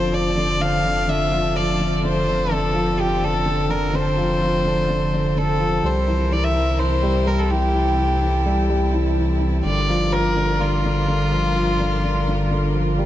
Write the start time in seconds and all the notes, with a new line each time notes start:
Already playing: F1 D3 F3 C4 D4 A4 C5
0.12 F3 D5
0.36 D3
0.60 D3 F5
0.84 D3
1.08 D3 E5
1.32 F3
1.56 F3 D5
1.79 D3
2.03 D3 C5
2.27 D3
2.51 D3 A4
2.74 F3
2.98 F3 G4
3.22 D3 A4
3.46 D3
3.69 D3 A#4
3.93 D3 C5
4.17 F3
4.41 F3
4.65 D3
4.89 D3
5.13 D3
5.36 D3 A4
5.60 F3
5.83 C2 C3 G3 E4 A#4 C5
6.07 E3
6.31 E3 D5
6.44 E5
6.55 E3
6.79 E3 C5
7.02 G3
7.26 G3 A#4
7.39 A4
7.50 E3 G4
7.74 E3 A4
7.98 E3
8.22 E3
8.46 G3
8.69 G3
8.93 E3
9.17 E3
9.41 E3
9.64 G1 D3 G3 D4 F4 A#4 D5
9.89 F3
10.12 F3 A#4
10.36 D3
10.60 D3 F4
10.84 D3
11.08 D3
11.32 F3
11.56 F3
11.80 D3
12.03 D3
12.27 D3
12.51 D3
12.75 F3
12.98 G3